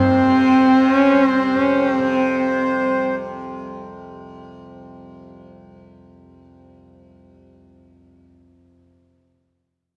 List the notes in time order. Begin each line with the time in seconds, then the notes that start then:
Already playing: C2 F2 C3 C4 C5
0.23 C3
0.68 C3
0.94 C#4
1.12 C2
1.25 C4
1.56 F2
1.60 C#4
1.91 C4
1.98 C3